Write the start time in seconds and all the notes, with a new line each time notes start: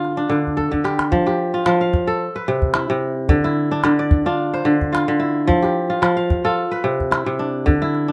Already playing: D3 D4 F4
0.05 calabash click
0.17 D4
0.29 D3, calabash click
0.47 calabash thump
0.57 A4, calabash thump
0.71 D3, calabash thump
0.84 G4, calabash click
0.99 calabash click
1.12 F3, calabash thump
1.26 G4, calabash click
1.54 F4
1.66 F3, calabash click
1.81 F5
1.93 calabash thump
2.07 A4
2.36 B4, calabash click
2.48 C3
2.62 calabash thump
2.74 E4, calabash click
2.90 C3
3.29 D3, calabash thump
3.44 E4, calabash click
3.71 D4
3.84 D3, calabash click
3.99 D5
4.11 calabash thump
4.26 D4 F4
4.54 C5, calabash click
4.65 D3
4.81 calabash thump
4.93 F4, calabash click
5.08 D3
5.20 E4
5.47 F3, calabash thump
5.62 G4, calabash click
5.90 F4
6.02 F3, calabash click
6.17 F5
6.30 calabash thump
6.45 F4 A4
6.71 B4, calabash click
6.84 C3
7.00 calabash thump
7.11 E4, calabash click
7.26 C3
7.39 D4
7.66 D3, calabash thump
7.82 E4, calabash click
7.95 calabash click
8.08 D4